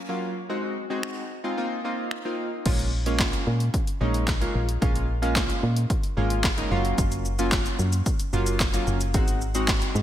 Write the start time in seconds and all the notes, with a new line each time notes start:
0.09 F#3 A#3 C#4 F4
0.49 G#3 C4 D#4 F#4
0.90 G#3 C4 D#4 F#4
1.03 finger snap
1.44 G#3 C4 D#4 F4
1.57 A#3 C4 D#4 F4
1.84 A#3 C4 D#4 F4
2.11 finger snap
2.25 A#3 C4 D#4 F4
2.66 A#1 G#3 A#3 C#4 F4, kick, closed hi-hat, crash
2.79 closed hi-hat
3.06 G#3 A#3 C#4 F4, closed hi-hat
3.20 kick, snare, clap, closed hi-hat
3.33 closed hi-hat
3.47 A#2
3.60 closed hi-hat
3.74 kick, closed hi-hat
3.87 closed hi-hat
4.00 A#1 G#3 A#3 C#4 D#4
4.14 closed hi-hat
4.28 kick, snare, clap, closed hi-hat
4.41 G#3 A#3 C#4 F4, closed hi-hat
4.55 A#1
4.69 closed hi-hat
4.81 A#1 G#3 A#3 C#4 F4, kick, closed hi-hat
4.95 closed hi-hat
5.22 G#3 A#3 C#4 F4, closed hi-hat
5.36 kick, snare, clap, closed hi-hat
5.50 closed hi-hat
5.63 A#2
5.76 closed hi-hat
5.90 kick, closed hi-hat
6.03 closed hi-hat
6.17 G#1 G#3 A#3 C#4 F4
6.30 closed hi-hat
6.44 kick, snare, clap, closed hi-hat
6.57 G#3 A#3 C#4 D#4, closed hi-hat
6.71 F#1 F#3 A#3 C#4 F4
6.85 closed hi-hat
6.98 F#1, kick, closed hi-hat, shaker
7.12 closed hi-hat, shaker
7.25 shaker
7.39 F#3 A#3 C#4 F4, closed hi-hat, shaker
7.52 kick, snare, clap, closed hi-hat, shaker
7.66 closed hi-hat, shaker
7.79 F#2, shaker
7.92 closed hi-hat, shaker
8.06 kick, closed hi-hat, shaker
8.20 closed hi-hat, shaker
8.33 F#1 F#3 A#3 C#4 F4, shaker
8.46 closed hi-hat, shaker
8.60 kick, snare, clap, closed hi-hat, shaker
8.74 F#3 A#3 C#4 F4, closed hi-hat, shaker
8.87 F#1, shaker
9.01 closed hi-hat, shaker
9.14 G#1 G#3 C4 D#4 F#4, kick, closed hi-hat, shaker
9.28 closed hi-hat, shaker
9.41 shaker
9.55 G#3 C4 D#4 F#4, closed hi-hat, shaker
9.68 kick, snare, clap, closed hi-hat, shaker
9.82 closed hi-hat, shaker
9.95 G#2, shaker